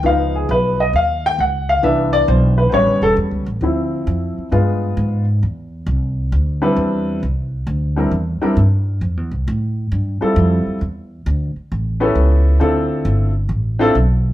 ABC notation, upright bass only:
X:1
M:4/4
L:1/8
Q:"Swing" 1/4=134
K:C
V:1 name="Upright bass" clef=bass
_D,,2 _C,,2 _E,,2 D,,2 | C,,2 B,,,2 (3A,,, G,,, E,,, (3E,, ^C,, A,,, | D,,2 F,, z G,,2 _A,,2 | E,,2 C,,2 D,,2 E,,2 |
C,,2 D,,2 E,, z G,,2 | (3F,, E,, C,, A,,2 G,, z F,, z | E,,2 D,, z A,,,2 ^C,,2 | D,,2 G,,,2 A,,,2 B,,,2 |]